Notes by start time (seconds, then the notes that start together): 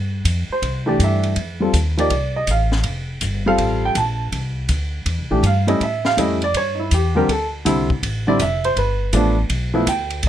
Already playing: G2
0.25 F2, kick, hi-hat pedal, ride
0.50 C5, muted upright bass stroke
0.62 C2, kick, ride
0.86 E3 A3 D4 G4 D5
0.99 G2, kick, hi-hat pedal, ride
1.04 E5
1.23 ride
1.36 F2, kick, ride
1.60 G3 C4 F4 A4
1.74 D#2, kick, hi-hat pedal, ride
1.97 F3 A#3 D#4 G4 D5, ride
2.10 C2, kick, ride
2.36 D#5
2.47 A1 F5, kick, hi-hat pedal, ride
2.72 snare
2.83 F1, kick, ride
3.21 G1, kick, hi-hat pedal, ride
3.46 G3 C4 F4 A4 F5
3.58 A1, kick, ride
3.85 G5
3.95 A#1 A5, kick, hi-hat pedal, ride
4.32 C2, kick, ride
4.69 D2, kick, hi-hat pedal, ride
5.06 E2, kick, ride
5.19 C2
5.31 A#1 E3 A3 D4 G4
5.43 G2 F5, kick, hi-hat pedal, ride
5.67 G3 A3 C#4 E4 D#5, ride
5.80 A2 E5, kick, ride
6.05 F5, snare
6.17 F2 G3 A3 C#4 E4 D#5, kick, hi-hat pedal, ride
6.42 D5, ride
6.54 G2 C#5, kick, ride
6.75 D#4
6.79 E4
6.91 E2 G4, kick, hi-hat pedal, ride
7.15 D3 G3 C4 G4 A#4
7.29 D2 A4, kick, ride
7.65 C2 D3 G3 C4 E4, kick, hi-hat pedal, ride
7.90 kick
8.03 A1, kick, ride
8.27 D3 G3 C4 E4 D5
8.39 F1 E5, kick, hi-hat pedal, ride
8.64 C5, ride
8.76 G1 B4, kick, ride
9.13 A1 F3 A3 B3 D4, kick, hi-hat pedal, ride
9.50 B1, kick, ride
9.74 F3 A3 B3 E4
9.87 D2 G5, kick, hi-hat pedal, ride
10.10 ride
10.23 C2, kick, ride